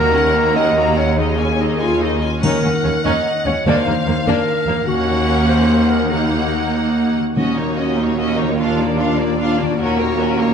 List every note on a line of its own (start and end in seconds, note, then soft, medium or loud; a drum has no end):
0.00 2.18 D#2 medium
0.00 0.53 D#3 medium
0.00 1.17 D#3 medium
0.00 0.14 A#3 medium
0.00 1.20 A#3 soft
0.00 0.15 F#4 medium
0.00 0.55 A#4 medium
0.00 1.20 A#4 medium
0.00 0.15 A#5 medium
0.15 1.38 C#4 soft
0.15 0.36 C#4 soft
0.15 0.37 A#4 soft
0.15 0.36 F#5 soft
0.35 0.56 A#3 soft
0.35 0.57 F#4 soft
0.35 0.76 C#5 soft
0.35 0.56 A#5 soft
0.56 0.77 C#4 soft
0.56 0.96 F#4 soft
0.56 0.77 A#4 soft
0.56 0.99 D#5 medium
0.56 0.77 F#5 soft
0.77 0.96 A#3 soft
0.77 0.96 F#4 soft
0.77 1.59 C#5 soft
0.77 0.96 A#5 soft
0.97 1.18 C#4 soft
0.97 1.20 F#4 soft
0.97 1.19 A#4 soft
0.97 1.20 C#5 medium
0.97 1.18 F#5 soft
1.18 2.43 D#3 soft
1.18 1.37 D#4 soft
1.18 1.38 D#4 soft
1.18 2.22 G#4 soft
1.18 1.37 D#5 soft
1.38 1.59 C#4 soft
1.38 2.64 C#4 soft
1.38 1.60 C#4 soft
1.38 1.60 G#5 soft
1.59 1.80 D#4 soft
1.59 1.81 D#4 soft
1.59 2.01 C#5 soft
1.59 1.80 D#5 soft
1.79 2.01 C#4 soft
1.79 2.00 F4 soft
1.79 2.01 G#5 soft
2.01 2.20 D#4 soft
2.01 2.22 D#4 soft
2.01 3.05 C#5 soft
2.01 2.21 D#5 soft
2.22 2.43 C#4 soft
2.22 2.43 F4 soft
2.22 2.45 G#4 soft
2.22 2.43 G#5 soft
2.42 2.51 D#2 soft
2.42 3.01 D#3 soft
2.42 3.65 D#3 soft
2.42 2.62 C#4 soft
2.42 2.62 D#4 medium
2.42 3.01 A#4 medium
2.42 3.62 F#5 soft
2.42 triangle soft
2.64 2.72 D#2 soft
2.64 2.72 A#3 soft
2.64 2.72 C#4 soft
2.64 3.68 C#4 soft
2.84 2.92 D#2 soft
2.84 2.92 C#4 soft
2.84 3.25 A#4 soft
3.04 3.13 D#2 soft
3.04 3.24 C#4 soft
3.04 3.24 D#4 soft
3.04 3.68 C#5 soft
3.04 3.47 D#5 medium
3.26 4.06 A#4 soft
3.46 3.54 D#2 soft
3.46 3.54 C#4 soft
3.46 3.68 F#4 soft
3.46 3.66 C#5 medium
3.66 3.75 D#2 medium
3.66 4.23 D#3 soft
3.66 4.86 D#3 soft
3.66 3.85 A#3 medium
3.66 3.85 D4 medium
3.66 4.26 C5 medium
3.66 4.85 F5 soft
3.87 3.95 D#2 soft
3.87 3.95 A#3 soft
3.87 4.89 D4 soft
4.07 4.15 D#2 soft
4.07 4.15 A#3 soft
4.07 4.46 A#4 soft
4.26 4.34 D#2 medium
4.26 4.35 D#2 medium
4.26 4.46 A#3 medium
4.26 4.46 D4 soft
4.26 4.86 A#4 medium
4.26 4.89 D5 soft
4.47 5.27 A#4 soft
4.67 4.75 D#2 soft
4.67 4.75 A#3 soft
4.67 4.76 A#3 soft
4.67 4.89 F4 soft
4.86 7.12 D#2 medium
4.86 7.13 D#2 medium
4.86 6.11 D#3 medium
4.86 6.07 A#3 medium
4.86 6.07 C#4 medium
4.86 5.47 F#4 medium
4.86 6.06 F#5 medium
5.08 6.12 C#4 soft
5.28 5.68 A#4 soft
5.48 5.92 C5 medium
5.69 6.52 A#4 soft
5.90 7.15 F#4 soft
5.90 6.13 A#4 medium
6.11 7.18 D#3 soft
6.11 7.15 A#3 soft
6.11 7.16 D#4 soft
6.11 7.15 D#4 soft
6.11 7.14 F#5 soft
6.32 8.61 D#4 soft
6.74 8.61 D#5 soft
6.95 7.31 A#4 soft
7.17 8.40 D#3 soft
7.17 7.27 F#4 soft
7.24 8.54 C#4 soft
7.28 8.57 F#4 soft
7.32 9.75 A#3 soft
7.32 7.56 F#4 soft
7.32 8.54 A#4 soft
7.36 9.75 D#2 soft
7.36 9.76 D#2 soft
7.36 9.75 A#2 soft
7.36 7.95 D#3 soft
7.36 8.55 C#4 soft
7.36 7.57 C#4 soft
7.36 8.55 F#4 soft
7.36 7.56 D#5 soft
7.57 7.79 A#3 soft
7.57 7.78 D#4 soft
7.57 7.78 C#5 soft
7.77 7.99 C#4 soft
7.77 7.98 F#4 soft
7.77 7.99 D#5 soft
7.97 8.19 A#3 soft
7.97 8.18 D#4 soft
7.97 8.20 C#5 soft
8.18 8.38 C#4 soft
8.18 8.37 F#4 soft
8.18 8.38 D#5 soft
8.37 8.60 A#3 soft
8.37 8.58 D#4 soft
8.37 8.59 C#5 soft
8.42 9.60 D#3 soft
8.46 9.75 D4 soft
8.50 9.77 F4 soft
8.55 9.79 D4 soft
8.55 8.78 F4 soft
8.55 9.74 A#4 soft
8.59 8.79 D4 soft
8.59 9.77 F4 soft
8.59 8.78 F5 soft
8.78 9.00 A#3 soft
8.78 8.99 D4 soft
8.78 9.00 D5 soft
8.98 9.19 D4 soft
8.98 9.19 F4 soft
8.98 9.20 F5 soft
9.19 9.39 A#3 soft
9.19 9.39 D4 soft
9.19 9.40 D5 soft
9.38 9.58 D4 soft
9.38 9.57 F4 soft
9.38 9.59 F5 soft
9.59 10.54 D#3 soft
9.59 9.79 A#3 soft
9.59 9.79 D4 soft
9.59 9.79 D5 soft
9.66 10.54 C#4 soft
9.71 10.54 F#4 soft
9.75 10.54 A#2 medium
9.75 10.54 C#4 medium
9.75 9.98 C#4 soft
9.75 10.54 F#4 soft
9.75 9.98 F#4 soft
9.75 10.54 A#4 soft
9.79 10.54 D#2 medium
9.79 10.54 A#3 medium
9.79 9.99 A#4 soft
9.99 10.19 A#3 soft
9.99 10.20 A#4 soft
9.99 10.20 C#5 soft
10.20 10.40 C#4 soft
10.20 10.40 F#4 soft
10.20 10.40 A#4 soft
10.40 10.54 A#3 soft
10.40 10.54 A#4 soft
10.40 10.54 C#5 soft